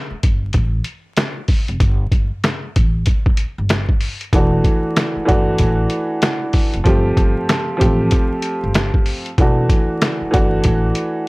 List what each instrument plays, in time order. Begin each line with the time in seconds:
0.11 muted upright bass stroke
0.23 upright bass G1, kick, closed hi-hat
0.53 upright bass A1, kick, closed hi-hat
0.84 closed hi-hat
1.17 snare, closed hi-hat
1.48 kick, open hi-hat
1.68 upright bass F1, closed hi-hat
1.80 upright bass G1, kick, closed hi-hat
2.12 upright bass G1, kick, closed hi-hat
2.44 snare, closed hi-hat
2.76 upright bass A1, kick, closed hi-hat
3.06 kick, closed hi-hat
3.26 kick
3.37 closed hi-hat
3.58 upright bass G1
3.69 snare, closed hi-hat
3.89 kick
4.01 open hi-hat
4.21 closed hi-hat
4.33 upright bass E1, upright piano E3 A3 D4 F#4, kick, closed hi-hat
4.64 kick, closed hi-hat
4.96 snare, closed hi-hat
5.16 muted upright bass stroke
5.25 upright bass G1, upright piano E3 A3 D4 F#4, kick, closed hi-hat
5.58 upright bass A1, kick, closed hi-hat
5.90 closed hi-hat
6.22 snare, closed hi-hat
6.53 kick, open hi-hat
6.74 upright bass F1, closed hi-hat
6.84 upright bass G1, upright piano F3 A3 C4 G4, kick, closed hi-hat
7.17 upright bass G1, kick, closed hi-hat
7.49 snare, closed hi-hat
7.77 upright piano F3 A3 C4 G4
7.81 upright bass A1, kick, closed hi-hat
8.11 kick, closed hi-hat
8.42 closed hi-hat
8.64 upright bass G1
8.74 snare, closed hi-hat
8.94 kick
9.06 open hi-hat
9.26 closed hi-hat
9.38 upright bass E1, upright piano E3 A3 D4 F#4, kick, closed hi-hat
9.70 kick, closed hi-hat
10.02 snare, closed hi-hat
10.22 muted upright bass stroke
10.31 upright bass G1, upright piano E3 A3 D4 F#4, kick, closed hi-hat
10.64 upright bass A1, kick, closed hi-hat
10.95 closed hi-hat